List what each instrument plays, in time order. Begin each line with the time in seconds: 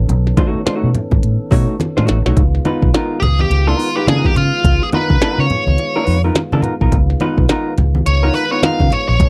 Already playing: tonewheel organ D#3 B3 C#4 A4
0.09 fingered electric bass B1, closed hi-hat, muted conga, low conga
0.27 snare
0.37 hollow-body jazz guitar A3 D#4 F#4 C#5, kick, closed hi-hat, high conga
0.55 muted fingered electric bass stroke
0.66 hollow-body jazz guitar A3 D#4 F#4 C#5, muted fingered electric bass stroke, snare, closed hi-hat
0.84 fingered electric bass B2
0.95 closed hi-hat, low conga
1.11 fingered electric bass G#2, kick, high conga
1.23 fingered electric bass A2, closed hi-hat
1.51 fingered electric bass B2, hollow-body jazz guitar A3 D#4 F#4 C#5, kick, open hi-hat, muted conga
1.80 snare, closed hi-hat, muted conga, high conga
1.97 fingered electric bass A2, hollow-body jazz guitar A3 D#4 F#4 C#5, snare, high conga
2.07 fingered electric bass A1, snare, closed hi-hat, muted conga
2.26 fingered electric bass B1, hollow-body jazz guitar A3 D#4 F#4 C#5, snare
2.36 fingered electric bass C#2, tonewheel organ D#3 G#3 B3 F4, kick, closed hi-hat, low conga
2.55 snare
2.65 hollow-body jazz guitar B3 D#4 F4 B4, closed hi-hat, high conga
2.82 fingered electric bass B1, kick
2.94 hollow-body jazz guitar B3 D#4 F4 A#4, snare, closed hi-hat, muted conga
3.20 fingered electric bass C#2, lead electric guitar G4 G#4, snare, closed hi-hat, muted conga, low conga
3.39 lead electric guitar G4, high conga
3.50 fingered electric bass C#2, closed hi-hat, muted conga
3.67 hollow-body jazz guitar B3 D#4 F4 A#4, lead electric guitar F4
3.79 open hi-hat
3.96 hollow-body jazz guitar B3 D#4 F4 B4, lead electric guitar G4
4.07 fingered electric bass C#3, hollow-body jazz guitar B3 D#4 F4 A#4, lead electric guitar G#4, snare, closed hi-hat, muted conga, high conga
4.24 lead electric guitar G4, kick, snare, high conga
4.35 fingered electric bass C#3, lead electric guitar F4, closed hi-hat, muted conga, low conga
4.64 fingered electric bass C#2, kick, closed hi-hat, low conga
4.82 lead electric guitar G#4, snare
4.92 hollow-body jazz guitar B3 D#4 F4 A#4, lead electric guitar B4, closed hi-hat, muted conga, high conga
5.10 fingered electric bass C#3, kick
5.21 hollow-body jazz guitar B3 D#4 F4 A#4, muted fingered electric bass stroke, snare, closed hi-hat, muted conga
5.38 fingered electric bass C#3, lead electric guitar C#5
5.50 closed hi-hat, muted conga, low conga
5.67 fingered electric bass C#2, high conga
5.78 closed hi-hat, muted conga
5.96 hollow-body jazz guitar B3 D#4 F4 B4
6.07 fingered electric bass F2, open hi-hat
6.24 hollow-body jazz guitar B3 D#4 F4 A#4
6.35 snare, closed hi-hat, high conga
6.52 fingered electric bass C#3, hollow-body jazz guitar B3 D#4 F4 A#4, snare, high conga
6.62 closed hi-hat, low conga
6.81 fingered electric bass B1, hollow-body jazz guitar B3 D#4 F4 A#4, kick
6.92 fingered electric bass C#2, kick, closed hi-hat, muted conga, low conga
7.10 snare
7.20 hollow-body jazz guitar B3 D#4 F4 B4, closed hi-hat, high conga
7.38 fingered electric bass B1, kick
7.49 hollow-body jazz guitar B3 D#4 F4 A#4, snare, closed hi-hat, muted conga
7.78 fingered electric bass C#2, snare, closed hi-hat, low conga
7.95 high conga
8.06 fingered electric bass C#2, lead electric guitar C#5, closed hi-hat, muted conga
8.23 hollow-body jazz guitar B3 D#4 F4 A#4
8.34 lead electric guitar B4, open hi-hat, muted conga
8.51 hollow-body jazz guitar B3 D#4 F4 B4, lead electric guitar C#5
8.63 hollow-body jazz guitar B3 D#4 F4 A#4, lead electric guitar F5, snare, closed hi-hat, muted conga, high conga
8.80 fingered electric bass C#3, kick, snare, high conga
8.90 lead electric guitar C#5, closed hi-hat, low conga
9.09 fingered electric bass A#1, lead electric guitar C#5
9.20 fingered electric bass B1, tonewheel organ E3 C#4 A4, kick, closed hi-hat, muted conga, low conga